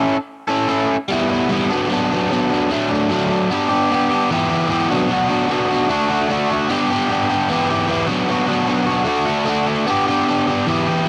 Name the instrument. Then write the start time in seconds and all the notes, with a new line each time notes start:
overdriven electric guitar
Already playing: C#4 E4 A4
0.48 C#4 E4 A4
0.68 C#4 E4 A4
1.09 G3 B3 E4
1.30 B3 E4
1.49 G3 B3 E4
1.69 F#3 B3 D4
1.90 F#3 B3 D4
2.10 F#3 B3 D4
2.29 F#3 B3 D4
2.50 B3 D4
2.70 F#3 A3 D4
2.90 A3 D4
3.10 F#3 A3 D4
3.30 A3 D4
3.50 B3 D4 G4
3.69 B3 D4 G4
3.91 B3 D4 G4
4.11 D4 G4
4.31 E3 B3 E4 G4
4.50 B3 E4 G4
4.68 E3 B3 E4 G4
4.90 F#3 B3 D4 F#4
5.10 F#3 B3 D4 F#4
5.29 F#3 B3 D4 F#4
5.48 F#3 B3 D4 F#4
5.68 B3 D4 F#4
5.89 A3 D4 F#4
6.10 D4 F#4
6.29 A3 D4 F#4
6.51 D4 F#4
6.69 B3 D4 G4
6.90 B3 D4 G4
7.09 B3 D4 G4
7.30 D4 G4
7.49 E3 B3 E4 G4
7.69 B3 E4 G4
7.88 E3 B3 E4 G4
8.07 F#3 B3 D4 F#4
8.28 F#3 B3 D4 F#4
8.47 F#3 B3 D4 F#4
8.67 F#3 B3 D4 F#4
8.86 B3 D4 F#4
9.05 A3 D4 F#4
9.26 D4 F#4
9.45 A3 D4 F#4
9.67 D4 F#4
9.86 B3 D4 G4
10.07 B3 D4 G4
10.27 B3 D4 G4
10.47 D4 G4
10.67 E3 B3 E4 G4
10.87 B3 E4 G4
11.06 E3